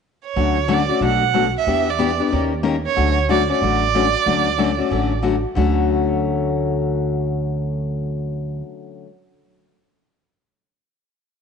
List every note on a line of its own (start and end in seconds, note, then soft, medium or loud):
0.25 0.74 C#5 medium
0.36 0.89 D2 medium
0.36 0.57 D3 medium
0.36 0.57 F#3 medium
0.36 0.57 A3 medium
0.36 0.57 C#4 medium
0.36 0.58 F#4 medium
0.68 0.80 D3 medium
0.68 0.80 F#3 medium
0.68 0.80 A3 medium
0.68 0.80 C#4 medium
0.68 0.80 F#4 medium
0.73 1.04 D5 medium
0.89 1.01 A3 soft
0.89 1.01 C#4 soft
0.89 1.01 F#4 medium
1.00 1.53 B1 medium
1.00 1.22 B2 medium
1.00 1.22 F#3 soft
1.00 1.23 A3 medium
1.00 1.22 D4 medium
1.00 1.23 F#4 medium
1.05 1.52 F#5 medium
1.34 1.45 B2 medium
1.34 1.45 F#3 medium
1.34 1.46 A3 medium
1.34 1.46 D4 medium
1.34 1.46 F#4 medium
1.57 1.91 E5 medium
1.67 2.19 E2 medium
1.67 1.88 E3 medium
1.67 1.87 B3 soft
1.67 1.88 D4 medium
1.67 1.88 G4 medium
1.90 2.34 D5 medium
1.99 2.10 E3 medium
1.99 2.10 B3 medium
1.99 2.11 D4 medium
1.99 2.11 G4 medium
2.20 2.32 B3 soft
2.20 2.32 D4 soft
2.20 2.31 G4 medium
2.31 2.85 D#2 medium
2.31 2.52 D#3 medium
2.31 2.53 A#3 medium
2.31 2.53 C#4 medium
2.31 2.53 G4 medium
2.31 2.53 A#4 medium
2.63 2.75 D#3 medium
2.63 2.75 A#3 medium
2.63 2.75 C#4 medium
2.63 2.75 G4 medium
2.63 2.75 A#4 medium
2.86 3.16 C#5 medium
2.96 3.49 D2 medium
2.96 3.17 D3 medium
2.96 3.17 F#3 medium
2.96 3.17 A3 medium
2.96 3.17 C#4 medium
2.96 3.18 F#4 medium
3.29 3.40 D3 medium
3.29 3.41 F#3 medium
3.29 3.41 A3 medium
3.29 3.41 C#4 medium
3.29 3.41 F#4 medium
3.29 3.49 D5 medium
3.49 3.62 A3 soft
3.49 3.62 C#4 soft
3.49 3.61 F#4 medium
3.49 5.22 D5 loud
3.61 4.14 A1 medium
3.61 3.83 D3 medium
3.61 3.83 F#3 medium
3.61 3.83 A3 medium
3.61 3.83 C#4 medium
3.61 3.83 F#4 medium
3.95 4.06 D3 medium
3.95 4.06 F#3 medium
3.95 4.06 A3 medium
3.95 4.06 C#4 medium
3.95 4.06 F#4 medium
4.26 4.79 D2 medium
4.26 4.47 D3 medium
4.26 4.47 F#3 medium
4.26 4.47 A3 medium
4.26 4.48 C#4 medium
4.26 4.47 F#4 medium
4.58 4.70 D3 medium
4.58 4.70 F#3 medium
4.58 4.70 A3 medium
4.58 4.71 C#4 medium
4.58 4.71 F#4 medium
4.78 4.90 A3 soft
4.78 4.90 C#4 soft
4.78 4.90 F#4 medium
4.91 5.43 A1 medium
4.91 5.12 D3 medium
4.91 5.12 F#3 medium
4.91 5.12 A3 soft
4.91 5.12 C#4 medium
4.91 5.12 F#4 medium
5.23 5.35 D3 medium
5.23 5.35 F#3 medium
5.23 5.35 A3 medium
5.23 5.35 C#4 medium
5.23 5.35 F#4 medium
5.55 8.61 D2 medium
5.55 9.05 D3 medium
5.55 9.06 F#3 medium
5.55 9.07 A3 medium
5.55 9.07 C#4 medium
5.55 9.08 F#4 medium